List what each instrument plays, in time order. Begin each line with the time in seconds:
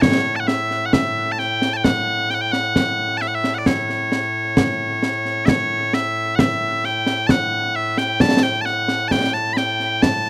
Already playing: bagpipes A2
0.02 bagpipes C#5, concert bass drum, snare
0.36 bagpipes A5
0.40 bagpipes F#5
0.47 bagpipes E5, snare
0.71 snare
0.86 bagpipes F#5
0.93 bagpipes E5, concert bass drum, snare
1.32 bagpipes A5
1.39 bagpipes G5, snare
1.62 snare
1.73 bagpipes G5 A5
1.84 bagpipes F#5, concert bass drum, snare
2.30 bagpipes G5, snare
2.34 bagpipes F#5
2.41 bagpipes G5
2.52 bagpipes F#5, snare
2.76 concert bass drum, snare
3.17 bagpipes A5, snare
3.21 bagpipes E5
3.28 bagpipes F#5
3.35 bagpipes E5
3.44 snare
3.54 bagpipes D5 F#5
3.66 bagpipes C#5, concert bass drum, snare
3.89 snare
4.12 snare
4.57 concert bass drum, snare
5.03 snare
5.25 snare
5.46 bagpipes C#5 E5, concert bass drum, snare
5.93 bagpipes E5, snare
6.35 bagpipes F#5, concert bass drum, snare
6.39 bagpipes E5
6.84 bagpipes G5, snare
7.06 snare
7.27 bagpipes F#5 A5, concert bass drum, snare
7.76 bagpipes E5
7.97 bagpipes G5, snare
8.20 bagpipes A5, concert bass drum, snare
8.43 bagpipes G5
8.61 bagpipes A5
8.65 bagpipes F#5, snare
8.88 snare
9.08 bagpipes G5 A5, concert bass drum, snare
9.34 bagpipes A5, snare
9.53 bagpipes G5 B5, snare
9.80 snare
10.02 bagpipes A5, concert bass drum, snare